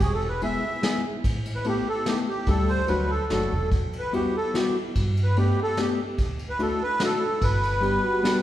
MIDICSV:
0, 0, Header, 1, 6, 480
1, 0, Start_track
1, 0, Key_signature, 1, "major"
1, 0, Tempo, 412088
1, 13, Time_signature, 3, 2, 24, 8
1, 9810, End_track
2, 0, Start_track
2, 0, Title_t, "Accordion"
2, 0, Program_c, 0, 21
2, 2, Note_on_c, 0, 68, 87
2, 155, Note_off_c, 0, 68, 0
2, 161, Note_on_c, 0, 69, 73
2, 331, Note_off_c, 0, 69, 0
2, 337, Note_on_c, 0, 71, 75
2, 483, Note_off_c, 0, 71, 0
2, 509, Note_on_c, 0, 76, 88
2, 1177, Note_off_c, 0, 76, 0
2, 1808, Note_on_c, 0, 71, 77
2, 1934, Note_off_c, 0, 71, 0
2, 1957, Note_on_c, 0, 67, 81
2, 2194, Note_off_c, 0, 67, 0
2, 2204, Note_on_c, 0, 69, 96
2, 2414, Note_on_c, 0, 67, 74
2, 2423, Note_off_c, 0, 69, 0
2, 2556, Note_off_c, 0, 67, 0
2, 2661, Note_on_c, 0, 67, 77
2, 2893, Note_off_c, 0, 67, 0
2, 2901, Note_on_c, 0, 69, 89
2, 3129, Note_on_c, 0, 72, 94
2, 3148, Note_off_c, 0, 69, 0
2, 3361, Note_on_c, 0, 71, 77
2, 3368, Note_off_c, 0, 72, 0
2, 3613, Note_on_c, 0, 69, 85
2, 3620, Note_off_c, 0, 71, 0
2, 3849, Note_off_c, 0, 69, 0
2, 3866, Note_on_c, 0, 69, 74
2, 4309, Note_off_c, 0, 69, 0
2, 4646, Note_on_c, 0, 71, 86
2, 4817, Note_off_c, 0, 71, 0
2, 4824, Note_on_c, 0, 67, 64
2, 5079, Note_off_c, 0, 67, 0
2, 5087, Note_on_c, 0, 69, 79
2, 5306, Note_on_c, 0, 67, 60
2, 5315, Note_off_c, 0, 69, 0
2, 5536, Note_off_c, 0, 67, 0
2, 6097, Note_on_c, 0, 71, 81
2, 6261, Note_off_c, 0, 71, 0
2, 6276, Note_on_c, 0, 67, 80
2, 6522, Note_off_c, 0, 67, 0
2, 6560, Note_on_c, 0, 69, 94
2, 6768, Note_off_c, 0, 69, 0
2, 6772, Note_on_c, 0, 67, 72
2, 6986, Note_off_c, 0, 67, 0
2, 7563, Note_on_c, 0, 71, 87
2, 7709, Note_off_c, 0, 71, 0
2, 7712, Note_on_c, 0, 69, 79
2, 7955, Note_off_c, 0, 69, 0
2, 7955, Note_on_c, 0, 71, 102
2, 8181, Note_off_c, 0, 71, 0
2, 8210, Note_on_c, 0, 69, 92
2, 8661, Note_on_c, 0, 71, 89
2, 8681, Note_off_c, 0, 69, 0
2, 9810, Note_off_c, 0, 71, 0
2, 9810, End_track
3, 0, Start_track
3, 0, Title_t, "French horn"
3, 0, Program_c, 1, 60
3, 9105, Note_on_c, 1, 67, 84
3, 9348, Note_off_c, 1, 67, 0
3, 9358, Note_on_c, 1, 66, 91
3, 9810, Note_off_c, 1, 66, 0
3, 9810, End_track
4, 0, Start_track
4, 0, Title_t, "Hollow-body jazz guitar"
4, 0, Program_c, 2, 26
4, 487, Note_on_c, 2, 59, 51
4, 488, Note_on_c, 2, 56, 52
4, 493, Note_on_c, 2, 64, 55
4, 501, Note_on_c, 2, 68, 61
4, 738, Note_off_c, 2, 59, 0
4, 739, Note_off_c, 2, 56, 0
4, 739, Note_off_c, 2, 64, 0
4, 745, Note_off_c, 2, 68, 0
4, 955, Note_on_c, 2, 56, 57
4, 964, Note_on_c, 2, 59, 61
4, 972, Note_on_c, 2, 64, 64
4, 978, Note_on_c, 2, 68, 84
4, 1208, Note_off_c, 2, 56, 0
4, 1213, Note_off_c, 2, 59, 0
4, 1217, Note_off_c, 2, 64, 0
4, 1220, Note_off_c, 2, 68, 0
4, 1922, Note_on_c, 2, 57, 58
4, 1927, Note_on_c, 2, 59, 56
4, 1933, Note_on_c, 2, 64, 47
4, 1938, Note_on_c, 2, 69, 61
4, 2170, Note_off_c, 2, 57, 0
4, 2172, Note_off_c, 2, 59, 0
4, 2175, Note_off_c, 2, 64, 0
4, 2177, Note_off_c, 2, 69, 0
4, 2396, Note_on_c, 2, 57, 65
4, 2402, Note_on_c, 2, 59, 57
4, 2414, Note_on_c, 2, 64, 53
4, 2420, Note_on_c, 2, 69, 67
4, 2648, Note_off_c, 2, 57, 0
4, 2651, Note_off_c, 2, 59, 0
4, 2657, Note_off_c, 2, 64, 0
4, 2660, Note_off_c, 2, 69, 0
4, 2879, Note_on_c, 2, 55, 73
4, 2885, Note_on_c, 2, 57, 68
4, 2891, Note_on_c, 2, 62, 60
4, 2900, Note_on_c, 2, 67, 86
4, 3269, Note_off_c, 2, 55, 0
4, 3271, Note_off_c, 2, 57, 0
4, 3274, Note_off_c, 2, 62, 0
4, 3279, Note_off_c, 2, 67, 0
4, 3349, Note_on_c, 2, 54, 61
4, 3358, Note_on_c, 2, 57, 47
4, 3369, Note_on_c, 2, 62, 50
4, 3372, Note_on_c, 2, 66, 58
4, 3607, Note_off_c, 2, 54, 0
4, 3611, Note_off_c, 2, 57, 0
4, 3616, Note_off_c, 2, 66, 0
4, 3617, Note_off_c, 2, 62, 0
4, 3848, Note_on_c, 2, 54, 59
4, 3852, Note_on_c, 2, 57, 57
4, 3860, Note_on_c, 2, 66, 70
4, 3861, Note_on_c, 2, 62, 52
4, 4101, Note_off_c, 2, 54, 0
4, 4102, Note_off_c, 2, 57, 0
4, 4106, Note_off_c, 2, 66, 0
4, 4107, Note_off_c, 2, 62, 0
4, 4807, Note_on_c, 2, 55, 45
4, 4809, Note_on_c, 2, 59, 50
4, 4815, Note_on_c, 2, 66, 60
4, 4823, Note_on_c, 2, 64, 49
4, 5064, Note_off_c, 2, 55, 0
4, 5064, Note_off_c, 2, 59, 0
4, 5068, Note_off_c, 2, 66, 0
4, 5072, Note_off_c, 2, 64, 0
4, 5283, Note_on_c, 2, 55, 64
4, 5290, Note_on_c, 2, 59, 59
4, 5298, Note_on_c, 2, 64, 60
4, 5299, Note_on_c, 2, 66, 78
4, 5542, Note_off_c, 2, 55, 0
4, 5544, Note_off_c, 2, 59, 0
4, 5548, Note_off_c, 2, 66, 0
4, 5549, Note_off_c, 2, 64, 0
4, 6253, Note_on_c, 2, 57, 55
4, 6256, Note_on_c, 2, 59, 49
4, 6261, Note_on_c, 2, 62, 46
4, 6266, Note_on_c, 2, 67, 63
4, 6504, Note_off_c, 2, 57, 0
4, 6504, Note_off_c, 2, 59, 0
4, 6507, Note_off_c, 2, 62, 0
4, 6510, Note_off_c, 2, 67, 0
4, 6724, Note_on_c, 2, 57, 63
4, 6735, Note_on_c, 2, 59, 64
4, 6737, Note_on_c, 2, 62, 54
4, 6744, Note_on_c, 2, 67, 78
4, 6979, Note_off_c, 2, 57, 0
4, 6985, Note_off_c, 2, 59, 0
4, 6985, Note_off_c, 2, 62, 0
4, 6989, Note_off_c, 2, 67, 0
4, 7677, Note_on_c, 2, 57, 59
4, 7681, Note_on_c, 2, 62, 45
4, 7683, Note_on_c, 2, 66, 55
4, 7686, Note_on_c, 2, 64, 49
4, 7931, Note_off_c, 2, 57, 0
4, 7931, Note_off_c, 2, 62, 0
4, 7934, Note_off_c, 2, 64, 0
4, 7934, Note_off_c, 2, 66, 0
4, 8160, Note_on_c, 2, 57, 62
4, 8166, Note_on_c, 2, 62, 62
4, 8170, Note_on_c, 2, 64, 58
4, 8176, Note_on_c, 2, 66, 80
4, 8413, Note_off_c, 2, 57, 0
4, 8414, Note_off_c, 2, 62, 0
4, 8417, Note_off_c, 2, 64, 0
4, 8420, Note_off_c, 2, 66, 0
4, 9093, Note_on_c, 2, 55, 55
4, 9105, Note_on_c, 2, 59, 40
4, 9110, Note_on_c, 2, 62, 46
4, 9113, Note_on_c, 2, 67, 52
4, 9360, Note_off_c, 2, 55, 0
4, 9366, Note_off_c, 2, 59, 0
4, 9369, Note_off_c, 2, 62, 0
4, 9369, Note_off_c, 2, 67, 0
4, 9584, Note_on_c, 2, 55, 68
4, 9591, Note_on_c, 2, 59, 63
4, 9597, Note_on_c, 2, 62, 74
4, 9606, Note_on_c, 2, 67, 84
4, 9810, Note_off_c, 2, 55, 0
4, 9810, Note_off_c, 2, 59, 0
4, 9810, Note_off_c, 2, 62, 0
4, 9810, Note_off_c, 2, 67, 0
4, 9810, End_track
5, 0, Start_track
5, 0, Title_t, "Upright bass"
5, 0, Program_c, 3, 32
5, 2, Note_on_c, 3, 28, 78
5, 626, Note_off_c, 3, 28, 0
5, 1447, Note_on_c, 3, 33, 84
5, 2067, Note_off_c, 3, 33, 0
5, 2877, Note_on_c, 3, 38, 85
5, 3191, Note_off_c, 3, 38, 0
5, 3374, Note_on_c, 3, 38, 80
5, 3685, Note_off_c, 3, 38, 0
5, 3848, Note_on_c, 3, 30, 64
5, 4075, Note_off_c, 3, 30, 0
5, 4103, Note_on_c, 3, 28, 76
5, 4311, Note_off_c, 3, 28, 0
5, 4328, Note_on_c, 3, 40, 67
5, 4958, Note_off_c, 3, 40, 0
5, 5771, Note_on_c, 3, 43, 92
5, 6395, Note_off_c, 3, 43, 0
5, 7202, Note_on_c, 3, 38, 74
5, 7824, Note_off_c, 3, 38, 0
5, 8634, Note_on_c, 3, 31, 79
5, 9264, Note_off_c, 3, 31, 0
5, 9810, End_track
6, 0, Start_track
6, 0, Title_t, "Drums"
6, 2, Note_on_c, 9, 51, 50
6, 5, Note_on_c, 9, 36, 91
6, 118, Note_off_c, 9, 51, 0
6, 121, Note_off_c, 9, 36, 0
6, 250, Note_on_c, 9, 51, 41
6, 367, Note_off_c, 9, 51, 0
6, 482, Note_on_c, 9, 51, 39
6, 599, Note_off_c, 9, 51, 0
6, 967, Note_on_c, 9, 38, 66
6, 967, Note_on_c, 9, 51, 41
6, 1084, Note_off_c, 9, 38, 0
6, 1084, Note_off_c, 9, 51, 0
6, 1448, Note_on_c, 9, 36, 93
6, 1448, Note_on_c, 9, 51, 56
6, 1564, Note_off_c, 9, 36, 0
6, 1565, Note_off_c, 9, 51, 0
6, 1694, Note_on_c, 9, 51, 47
6, 1810, Note_off_c, 9, 51, 0
6, 1915, Note_on_c, 9, 51, 46
6, 2032, Note_off_c, 9, 51, 0
6, 2400, Note_on_c, 9, 38, 56
6, 2400, Note_on_c, 9, 51, 46
6, 2516, Note_off_c, 9, 38, 0
6, 2516, Note_off_c, 9, 51, 0
6, 2871, Note_on_c, 9, 51, 48
6, 2878, Note_on_c, 9, 36, 80
6, 2987, Note_off_c, 9, 51, 0
6, 2995, Note_off_c, 9, 36, 0
6, 3125, Note_on_c, 9, 51, 40
6, 3241, Note_off_c, 9, 51, 0
6, 3353, Note_on_c, 9, 51, 41
6, 3470, Note_off_c, 9, 51, 0
6, 3845, Note_on_c, 9, 38, 53
6, 3845, Note_on_c, 9, 51, 43
6, 3961, Note_off_c, 9, 38, 0
6, 3961, Note_off_c, 9, 51, 0
6, 4324, Note_on_c, 9, 51, 39
6, 4328, Note_on_c, 9, 36, 87
6, 4440, Note_off_c, 9, 51, 0
6, 4444, Note_off_c, 9, 36, 0
6, 4578, Note_on_c, 9, 51, 42
6, 4694, Note_off_c, 9, 51, 0
6, 4814, Note_on_c, 9, 51, 46
6, 4930, Note_off_c, 9, 51, 0
6, 5299, Note_on_c, 9, 38, 61
6, 5299, Note_on_c, 9, 51, 51
6, 5415, Note_off_c, 9, 38, 0
6, 5415, Note_off_c, 9, 51, 0
6, 5768, Note_on_c, 9, 51, 55
6, 5774, Note_on_c, 9, 36, 81
6, 5885, Note_off_c, 9, 51, 0
6, 5891, Note_off_c, 9, 36, 0
6, 6020, Note_on_c, 9, 51, 47
6, 6137, Note_off_c, 9, 51, 0
6, 6247, Note_on_c, 9, 51, 42
6, 6363, Note_off_c, 9, 51, 0
6, 6723, Note_on_c, 9, 38, 65
6, 6723, Note_on_c, 9, 51, 48
6, 6839, Note_off_c, 9, 38, 0
6, 6839, Note_off_c, 9, 51, 0
6, 7200, Note_on_c, 9, 51, 44
6, 7204, Note_on_c, 9, 36, 85
6, 7317, Note_off_c, 9, 51, 0
6, 7321, Note_off_c, 9, 36, 0
6, 7442, Note_on_c, 9, 51, 37
6, 7559, Note_off_c, 9, 51, 0
6, 7680, Note_on_c, 9, 51, 40
6, 7796, Note_off_c, 9, 51, 0
6, 8152, Note_on_c, 9, 38, 72
6, 8152, Note_on_c, 9, 51, 52
6, 8268, Note_off_c, 9, 38, 0
6, 8268, Note_off_c, 9, 51, 0
6, 8637, Note_on_c, 9, 51, 53
6, 8638, Note_on_c, 9, 36, 90
6, 8754, Note_off_c, 9, 51, 0
6, 8755, Note_off_c, 9, 36, 0
6, 8889, Note_on_c, 9, 51, 43
6, 9006, Note_off_c, 9, 51, 0
6, 9118, Note_on_c, 9, 51, 39
6, 9235, Note_off_c, 9, 51, 0
6, 9609, Note_on_c, 9, 38, 66
6, 9609, Note_on_c, 9, 51, 50
6, 9726, Note_off_c, 9, 38, 0
6, 9726, Note_off_c, 9, 51, 0
6, 9810, End_track
0, 0, End_of_file